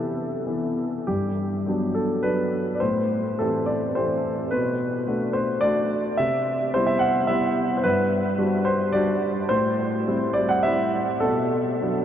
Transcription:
Already playing: C3 E3 B3 E4 G4 A4
0.46 E3 B3 E4
1.07 G2 G4
1.66 F#3 B3 D4
1.94 A4
2.23 F#3 B3 D4 B4
2.75 D5
2.80 A2 C5
3.39 E3 C4 G4 A4
3.66 D5
3.95 E3 C4 G4 C5
4.51 B2 B4
5.07 A3 D4 F#4
5.33 C5
5.61 A3 D4 F#4 D5
6.17 C3 E5
6.74 G3 B3 E4 C5
6.87 E5
6.99 F#5
7.27 G3 B3 E4 E5
7.77 C5
7.83 G2 B4
8.38 G3 D4 F#4
8.65 C5
8.93 G3 D4 F#4 D5
9.49 A2 C5
10.07 G3 C4 E4
10.33 D5
10.49 F#5
10.63 G3 C4 E4 E5
11.20 B2 A4
11.81 F#3 B3 D4

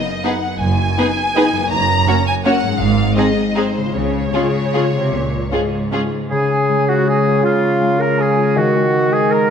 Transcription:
Already playing: F#2 B3 D#4 F#4 D#5
0.24 B3 D#4 G#4 B4 F#5
0.60 F#1 F#2 G#5
0.98 B3 D#4 G#4 B4
1.35 B3 D#4 G#4 B4
1.53 F#2
1.57 A#3
1.62 F#4
1.67 F#1 C#5
1.71 F#2 A#5
2.07 A#3 C#4 F#4 C#5
2.27 G#5
2.45 A#3 C#4 F#4 C#5 F#5
2.63 G#2
2.67 G#3
2.71 D#4
2.76 G#1 C5
2.80 G#2 F5
3.17 G#3 C4 D#4 G#4 D#5
3.56 G#3 C4 D#4 G#4 C5
3.77 C#3
3.81 G#3
3.86 F4
3.91 C#2 C#3 C#5
3.95 C#5
4.33 C#3 G#3 C#4 F4 G#4
4.74 G#3 C#4 F4 G#4
4.94 C3
5.13 C#2 A#2
5.52 G#2 G#3 C#4 F4 G#4
5.92 G#3 C#4 F4 G#4
6.30 C#3 G#4 G#5
6.50 C#4
6.69 G#3
6.88 F4 F#4 F#5
7.07 G#4 C#5 G#5
7.26 F4
7.43 C#3 F4 F5
7.63 C#4
7.81 G#3
7.99 F4 A#4 A#5
8.19 G#4 C#5 G#5
8.38 F4
8.56 D#3 F#4 F#5
8.73 G#3
8.93 D#4
9.12 G#4 C5 G#5
9.31 G#4 A#4 A#5

